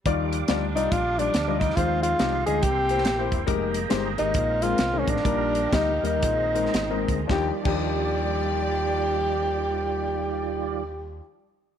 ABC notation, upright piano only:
X:1
M:4/4
L:1/16
Q:"Swing" 1/4=129
K:Eb
V:1 name="Upright piano"
[G,EFd]2 z2 [G,EFd] z [G,EFd]2 z2 [G,EFd]2 z [G,EFe]2 z | [A,EFc]2 z2 [A,EFG] z [A,EFe]2 z2 [B,=EGc]2 z [B,EGc]2 z | [A,EGB]2 z2 [A,EGc] z [A,EGB]2 z2 [A,CEB]2 z [A,CEB]2 z | [G,B,EB]2 z2 [G,B,EG] z [G,B,EB]2 z2 [A,CEB]2 z [A,CEB]2 z |
[F,DEG] z [F,DEG]12- [F,DEG]2- | [F,DEG]16 |]
V:2 name="Upright piano" clef=bass
E,6 z8 z2 | E,6 z2 C,6 z2 | z8 B,,6 z2 | B,,6 z2 B,,6 z2 |
E,,2 E,,12- E,,2- | E,,16 |]